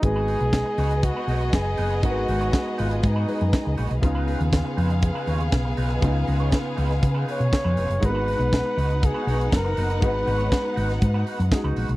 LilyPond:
<<
  \new Staff \with { instrumentName = "Flugelhorn" } { \time 4/4 \key gis \dorian \tempo 4 = 120 gis'2 fis'4 gis'4 | fis'4. eis'8 dis'4. r8 | r1 | r2 r8 cis''4. |
b'2 gis'4 ais'4 | b'2 r2 | }
  \new Staff \with { instrumentName = "Violin section" } { \time 4/4 \key gis \dorian <b gis' dis''>1~ | <b gis' dis''>1 | <b gis' eis''>1~ | <b gis' eis''>1 |
<b dis' fis''>1~ | <b dis' fis''>1 | }
  \new Staff \with { instrumentName = "Clean electric guitar" } { \time 4/4 \key gis \dorian r16 <dis' fis' b'>16 <dis' fis' b'>16 r8. <dis' fis' b'>16 r8 <dis' fis' b'>16 <dis' fis' cis''>16 r8. <dis' fis' b'>16 <dis' fis' b'>16 | <dis' fis' b'>16 r16 <dis' fis' b'>16 <dis' fis' cis''>16 r8 <dis' fis' b'>16 r8 <dis' fis' b'>16 <dis' fis' b'>16 r8. <dis' fis' b'>16 r16 | r16 <dis' eis' b'>16 <dis' eis' b'>16 r8. <dis' eis' b'>16 r8 <dis' eis' b'>16 <dis' eis' cis''>16 r8. <dis' eis' b'>16 <dis' eis' b'>16 | <dis' eis' b'>16 r16 <dis' eis' b'>16 <dis' eis' cis''>16 r8 <dis' eis' b'>16 r8 <dis' eis' b'>16 <dis' eis' b'>16 r8 <dis' eis' b'>16 <dis' eis' b'>16 r16 |
r16 <dis' fis' b'>16 <dis' fis' b'>16 r8. <dis' fis' b'>16 r8 <dis' fis' b'>16 <dis' fis' cis''>16 r8. <dis' fis' b'>16 <dis' fis' b'>16 | <dis' fis' b'>16 r16 <dis' fis' b'>16 <dis' fis' cis''>16 r8 <dis' fis' b'>16 r8 <dis' fis' b'>16 <dis' fis' b'>16 r8 <dis' fis' b'>16 <dis' fis' b'>16 r16 | }
  \new Staff \with { instrumentName = "Grand piano" } { \time 4/4 \key gis \dorian <gis dis' fis' b'>1 | <gis dis' fis' ais' b'>2~ <gis dis' fis' ais' b'>8 <gis dis' fis' b'>4. | <cis b dis' eis'>1 | <cis b dis' eis'>1 |
<gis b dis' fis' ais'>1 | <gis dis' fis' b'>2. <gis dis' fis' gis'>4 | }
  \new Staff \with { instrumentName = "Fingered electric bass" } { \clef bass \time 4/4 \key gis \dorian gis,,8. b,,8 r16 cis,8. r16 b,,8 fis,,8 fis,,8 | gis,,8 gis,,8 r8 gis,,8 gis,8 r16 fis,16 r16 cis,16 ais,,16 b,,16 | cis,8. dis,8 r16 eis,8. r16 dis,8 b,,8 b,,8 | cis,8 cis,8 r8 cis,8 cis8 r16 b,16 r16 eis,16 eis,,16 fis,,16 |
gis,,8. b,,8 r16 cis,8. r16 b,,8 fis,,8 fis,,8 | gis,,8 gis,,8 r8 gis,,8 gis,8 r16 fis,16 r16 cis,16 ais,,16 b,,16 | }
  \new DrumStaff \with { instrumentName = "Drums" } \drummode { \time 4/4 <hh bd>8 hho16 hh16 <hh bd sn>8 hho16 hh16 <hh bd>8 hho16 hh16 <hh bd sn>8 hho16 hh16 | <hh bd>8 hho16 hh16 <hh bd sn>8 hho16 hh16 <hh bd>8 hho16 hh16 <hh bd sn>8 hho16 hh16 | <hh bd>8 hho16 hh16 <hh bd sn>8 hho16 hh16 <hh bd>8 hho16 hh16 <hh bd sn>8 hho16 hh16 | <hh bd>8 hho16 hh16 <hh bd sn>8 hho16 <hh sn>16 <hh bd>8 hho16 hh16 <hh bd sn>8 hho16 hh16 |
<hh bd>8 hho16 hh16 <hh bd sn>8 hho16 hh16 <hh bd>8 hho16 hh16 <hh bd sn>8 hho16 hh16 | <hh bd>8 hho16 hh16 <hh bd sn>8 hho16 <hh sn>16 <hh bd>8 hho16 hh16 <hh bd sn>8 hho16 hh16 | }
>>